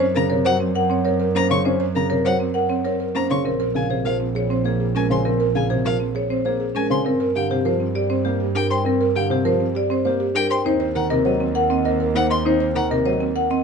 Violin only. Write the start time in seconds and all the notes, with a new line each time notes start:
0.16 A#5
0.46 F#5
1.36 A#5
1.51 C#6
1.96 A#5
2.26 F#5
3.16 A#5
3.31 C#6
3.76 G#5
4.06 F5
4.96 G#5
5.11 C6
5.56 G#5
5.86 F5
6.76 G#5
6.91 C6
7.36 G5
8.55 G5
8.70 C6
9.16 G5
10.36 G5
10.50 C6
10.96 F#5
12.16 F#5
12.31 C6
12.76 F#5